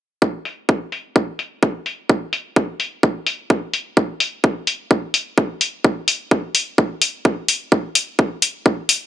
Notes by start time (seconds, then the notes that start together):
0.22 kick
0.45 open hi-hat
0.69 kick
0.92 open hi-hat
1.16 kick
1.39 open hi-hat
1.63 kick
1.86 open hi-hat
2.09 kick
2.33 open hi-hat
2.56 kick
2.80 open hi-hat
3.03 kick
3.27 open hi-hat
3.50 kick
3.73 open hi-hat
3.97 kick
4.20 open hi-hat
4.44 kick
4.67 open hi-hat
4.91 kick
5.14 open hi-hat
5.38 kick
5.61 open hi-hat
5.84 kick
6.08 open hi-hat
6.31 kick
6.55 open hi-hat
6.78 kick
7.02 open hi-hat
7.25 kick
7.48 open hi-hat
7.72 kick
7.95 open hi-hat
8.19 kick
8.42 open hi-hat
8.66 kick
8.89 open hi-hat